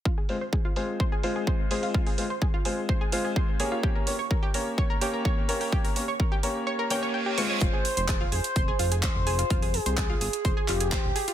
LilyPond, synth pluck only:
\new Staff \with { instrumentName = "Synth pluck" } { \time 4/4 \key f \minor \tempo 4 = 127 f'16 aes'16 r16 c''16 aes'16 f'16 aes'16 r16 c''16 aes'16 f'16 aes'16 c''16 r16 aes'16 f'16 | f'16 aes'16 r16 c''16 aes'16 f'16 aes'16 r16 c''16 aes'16 f'16 aes'16 c''16 r16 aes'16 f'16 | g'16 bes'16 r16 des''16 bes'16 g'16 bes'16 r16 des''16 bes'16 g'16 bes'16 des''16 r16 bes'16 g'16 | g'16 bes'16 r16 des''16 bes'16 g'16 bes'16 r16 des''16 bes'16 g''16 des''16 g''16 g'16 des'''16 des''16 |
f'16 aes'16 r16 c''16 aes'16 f'16 aes'16 r16 c''16 aes'16 f'16 aes'16 c''16 r16 aes'16 f'16 | f'16 aes'16 r16 c''16 aes'16 f'16 aes'16 r16 c''16 aes'16 f'16 aes'16 c''16 r16 aes'16 f'16 | }